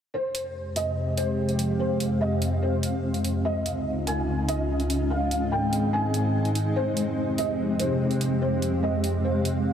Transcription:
0.14 F2 C3 G#3 C4 G4 C5
0.35 G#3, closed hi-hat
0.76 D#5, closed hi-hat
0.86 F5
1.17 C5, closed hi-hat
1.49 closed hi-hat
1.59 closed hi-hat
1.79 C5
2.00 closed hi-hat
2.21 D#5
2.42 closed hi-hat
2.62 C5
2.83 closed hi-hat
3.14 closed hi-hat
3.24 closed hi-hat
3.45 C#2 C#3 C#4 D#4 F4 D#5
3.62 F4, closed hi-hat
4.07 G#5, closed hi-hat
4.12 D#5
4.48 D#5, closed hi-hat
4.80 closed hi-hat
4.90 closed hi-hat
5.10 G#2 D#3 C4 G#4 F5
5.25 D#4
5.31 closed hi-hat
5.52 G5
5.73 closed hi-hat
5.93 G#5
6.14 closed hi-hat
6.45 closed hi-hat
6.55 closed hi-hat
6.76 F2 C3 G#3 G4 C5
6.97 closed hi-hat
7.38 D#5, closed hi-hat
7.79 C5 F5, closed hi-hat
8.11 closed hi-hat
8.21 closed hi-hat
8.42 C5
8.62 closed hi-hat
8.83 D#5
9.04 closed hi-hat
9.24 C5
9.45 closed hi-hat

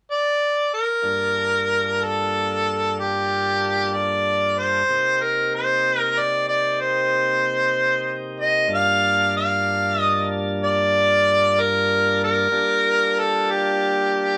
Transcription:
0.11 D5
0.74 A#4
1.02 G2 A#3 D4 F4 A4
2.03 A4
2.99 G4
3.95 D5
4.58 C5
4.88 C3 A#3 C4 D#4 G4
5.23 A#4
5.55 C5
5.99 A#4
6.19 D5
6.48 D5
6.81 C5
8.40 D#5
8.68 G2 A#3 D4 F4 A5
8.74 F5
9.37 F5
10.01 D#5
10.64 D5
11.60 A#4
12.24 A#4
12.51 G3 A#3 D4 F4 A5
13.19 A4
13.51 G4

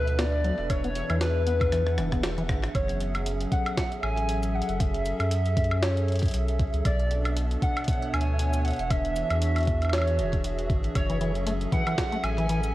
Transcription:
Already playing: D2 B2 B3 D4 A4 B4 E5
0.07 closed hi-hat
0.18 B3 D5, snare, closed hi-hat
0.44 F#3, closed hi-hat
0.59 E1
0.70 E3 C#5, kick, closed hi-hat, high woodblock
0.84 B3 G#4, closed hi-hat
0.95 closed hi-hat
1.10 E2 E3, closed hi-hat, high woodblock
1.21 B4, snare, closed hi-hat
1.36 F#5
1.47 B3, closed hi-hat
1.61 kick, closed hi-hat, high woodblock
1.72 E3, cross-stick, closed hi-hat
1.87 cross-stick
1.98 E1 E3, cross-stick, closed hi-hat
2.12 B3, kick, cross-stick, closed hi-hat
2.24 cross-stick, snare, closed hi-hat
2.38 E3, closed hi-hat
2.49 G#1, kick, cross-stick, closed hi-hat
2.64 cross-stick, closed hi-hat
2.75 F#1 F#3 C#4 C#5 E5, kick, closed hi-hat, high woodblock
2.89 closed hi-hat
3.00 closed hi-hat
3.15 closed hi-hat, high woodblock
3.26 A4, closed hi-hat
3.41 E5, closed hi-hat
3.52 F#5, kick, closed hi-hat
3.66 closed hi-hat, high woodblock
3.77 F#5, kick, snare, closed hi-hat
3.92 closed hi-hat
4.03 A1 G#5, high woodblock
4.17 closed hi-hat
4.29 closed hi-hat
4.43 closed hi-hat, shaker
4.55 F#5
4.62 closed hi-hat
4.69 F#1, closed hi-hat
4.80 E5, kick, closed hi-hat
4.94 closed hi-hat
5.06 closed hi-hat, shaker
5.20 F#2, closed hi-hat, high woodblock
5.31 closed hi-hat
5.46 closed hi-hat
5.57 kick, closed hi-hat
5.64 closed hi-hat
5.71 high woodblock
5.83 C#5, snare, closed hi-hat
5.97 closed hi-hat
6.08 closed hi-hat
6.12 closed hi-hat
6.16 closed hi-hat
6.19 kick, closed hi-hat
6.23 closed hi-hat
6.26 closed hi-hat
6.28 closed hi-hat
6.31 closed hi-hat
6.34 B1, closed hi-hat
6.48 closed hi-hat
6.60 kick, closed hi-hat
6.74 C#2, closed hi-hat
6.85 B1 B2 D5, kick, closed hi-hat, high woodblock
6.94 D4
7.00 B3, closed hi-hat
7.11 closed hi-hat
7.25 closed hi-hat, high woodblock
7.37 closed hi-hat
7.51 closed hi-hat
7.62 F#5, kick, closed hi-hat
7.77 C#5, closed hi-hat, high woodblock
7.84 F#5, kick, closed hi-hat
7.88 closed hi-hat
8.02 closed hi-hat
8.13 D2 G#5, closed hi-hat, high woodblock
8.21 closed hi-hat
8.39 closed hi-hat
8.54 closed hi-hat, shaker
8.64 F#5, closed hi-hat
8.68 closed hi-hat
8.70 closed hi-hat
8.73 closed hi-hat
8.76 E1, closed hi-hat
8.79 closed hi-hat
8.90 E3 E5, kick, closed hi-hat, high woodblock
9.05 closed hi-hat
9.13 G#4, closed hi-hat, shaker
9.21 F#4 E5
9.30 E2, closed hi-hat, high woodblock
9.42 closed hi-hat
9.56 closed hi-hat, high woodblock
9.58 closed hi-hat
9.60 closed hi-hat
9.63 closed hi-hat
9.65 kick, closed hi-hat
9.67 closed hi-hat
9.82 closed hi-hat, high woodblock
9.84 high woodblock
9.89 C#5, snare, closed hi-hat, high woodblock
9.93 high woodblock
9.98 high woodblock
10.01 high woodblock
10.07 closed hi-hat
10.19 E1, closed hi-hat
10.33 kick, closed hi-hat
10.44 closed hi-hat
10.59 closed hi-hat
10.70 G#1, kick, closed hi-hat
10.84 closed hi-hat
10.95 F#1 F#3 C#5, kick, closed hi-hat, high woodblock
11.10 E3 A4, closed hi-hat
11.14 C#4
11.21 E3, closed hi-hat
11.35 closed hi-hat
11.47 A3, closed hi-hat
11.61 closed hi-hat
11.72 E3 F#5, kick, closed hi-hat
11.87 E3, closed hi-hat, high woodblock
11.98 F#5, kick, snare, closed hi-hat
12.12 A3, closed hi-hat
12.24 A1 G#5, closed hi-hat, high woodblock
12.38 E3, closed hi-hat
12.49 E3, closed hi-hat
12.64 closed hi-hat, shaker

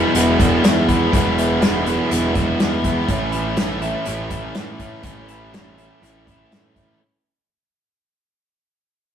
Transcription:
Already playing: E2 B2 E3 F#3 G#3 B3 E4 F#4
0.15 E1 E3 F#3 G#3 B3 E4, closed hi-hat
0.39 E3 G#3 B3 E4 F#4, kick, closed hi-hat
0.63 E2 E3 G#3 B3 E4 G#4, snare, closed hi-hat
0.88 G#3 B3 E4, kick, closed hi-hat
1.12 E1 E2 B2 E3 F#3 G#3 B3 E4, kick, closed hi-hat
1.37 E3 G#3 B3 E4, closed hi-hat
1.61 E2 B2 E3 F#3 G#3 B3 E4, snare, closed hi-hat
1.86 E3 G#3 B3 E4 F#4, closed hi-hat
2.11 E1 E3 F#3 G#3 B3 E4, closed hi-hat
2.35 E3 G#3 B3 E4 F#4, kick, closed hi-hat
2.59 E2 E3 G#3 B3 E4 G#4, snare, closed hi-hat
2.84 G#3 B3 E4, kick, closed hi-hat
3.08 A1 A2 E3 A3 C#4 E4, kick, closed hi-hat
3.32 A3 C#4 E4, closed hi-hat
3.56 A2 E3 A3 C#4 E4, snare, closed hi-hat
3.80 A3 C#4 E4, closed hi-hat
4.05 A1 A2 E3 A3 C#4 E4, closed hi-hat
4.29 A3 C#4 E4, kick, closed hi-hat
4.54 A2 E3 A3 C#4 E4 A4, snare, closed hi-hat
4.79 A3 C#4 E4, kick, closed hi-hat
5.02 A1 A2 E3 A3 C#4 E4, kick, closed hi-hat
5.28 A3 C#4 E4, closed hi-hat
5.52 A2 E3 A3 C#4 E4, snare, closed hi-hat
5.78 A3 C#4 E4, closed hi-hat
6.01 A1 A2 E3 A3 C#4 E4, closed hi-hat
6.27 A3 C#4 E4, kick, closed hi-hat
6.51 A2 E3 A3 C#4 E4 A4, snare, closed hi-hat
6.76 A3 C#4 E4, kick, closed hi-hat

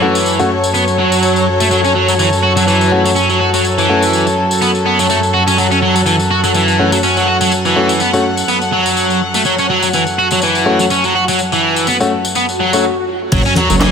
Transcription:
Already playing: F#2 E3 F#3 A4 C#5
0.02 A3 C#4 F#4
0.15 tambourine
0.26 tambourine
0.39 A3 C#4 F#4, tambourine
0.64 tambourine
0.74 B3, tambourine
0.88 tambourine
0.98 F#3
1.12 tambourine
1.23 tambourine
1.36 tambourine
1.60 A3, tambourine
1.71 F#3, tambourine
1.84 C#4, tambourine
1.95 F#3
2.08 F#3, tambourine
2.19 E3, tambourine
2.33 tambourine
2.43 F#4
2.57 F#3, tambourine
2.67 E3, tambourine
2.81 tambourine
2.92 A3 C#4 F#4
3.05 F#3, tambourine
3.16 C#4, tambourine
3.30 F#3, tambourine
3.41 F#4
3.54 F#3, tambourine
3.65 tambourine
3.78 E3, tambourine
3.89 A3 C#4 F#4
4.02 tambourine
4.13 tambourine
4.27 tambourine
4.51 tambourine
4.62 B3, tambourine
4.75 tambourine
4.86 B3
4.99 F#3, tambourine
5.10 A3, tambourine
5.23 tambourine
5.34 F#4
5.48 C#4, tambourine
5.58 F#3 F#5, tambourine
5.72 C#4, tambourine
5.82 F#3
5.96 F#3, tambourine
6.06 E3, tambourine
6.20 tambourine
6.31 F#4
6.44 F#3, tambourine
6.54 E3, tambourine
6.68 tambourine
6.79 A3 C#4 F#4
6.92 F#3, tambourine
7.03 C#4, tambourine
7.17 F#3, tambourine
7.28 F#4
7.41 F#3, tambourine
7.52 tambourine
7.65 E3, tambourine
7.76 A3 C#4 F#4
7.89 tambourine
8.00 B3, tambourine
8.13 A3 C#4 F#4, tambourine
8.37 tambourine
8.48 B3, tambourine
8.61 tambourine
8.73 F#3
8.86 tambourine
8.97 tambourine
9.10 tambourine
9.34 A3, tambourine
9.45 F#3, tambourine
9.58 C#4, tambourine
9.70 F#3
9.83 F#3, tambourine
9.93 E3, tambourine
10.07 tambourine
10.19 F#4
10.31 F#3, tambourine
10.42 E3, tambourine
10.55 tambourine
10.66 A3 C#4 F#4
10.79 F#3, tambourine
10.90 C#4, tambourine
11.04 F#3, tambourine
11.15 F#4
11.28 F#3, tambourine
11.39 tambourine
11.52 E3, tambourine
11.76 tambourine
11.87 B3, tambourine
12.00 A3 C#4 F#4, tambourine
12.25 tambourine
12.35 B3, tambourine, swell
12.49 tambourine
12.60 F#3
12.73 A3 C#4 F#4, tambourine
13.32 F#1 F#3 F#4 A4 C#5, kick, closed hi-hat, crash, tambourine, sub drop, muted conga
13.45 C#4, tambourine
13.56 F#3, closed hi-hat, high conga
13.70 F#1 F#3, tambourine, muted conga
13.80 E3, snare, clap, closed hi-hat, tambourine

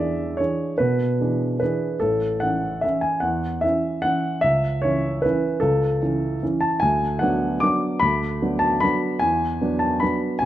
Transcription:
Already playing: E2 E3 D4 D5 E5
0.00 G#4
0.37 E3 D4 G#4 C#5
0.78 B2 B4
1.20 E3 D4 G#4
1.60 E3 D4 G#4 B4
2.00 A1 A4
2.40 E3 C#4 E4 F#5
2.81 E3 C#4 E4 E5
3.01 G#5
3.20 E2 F#5
3.61 E3 C#4 E4 E5
4.02 E3 C#4 E4 F#5
4.41 C#2 E5
4.82 E3 C#4 E4 C#5
5.22 E3 C#4 E4 B4
5.60 C#2 A4
6.02 E3 C#4 E4
6.43 E3 C#4 E4
6.61 A5
6.80 D2 G#5
7.19 F#3 B3 D4 F#5
7.60 F#3 B3 D4 D6
8.00 D2 B5
8.42 F#3 B3 D4
8.59 A5
8.80 F#3 B3 D4 B5
9.19 E2 G#5
9.62 F#3 B3 D4
9.79 A5
10.00 F#3 B3 D4 B5
10.39 B2 G#5

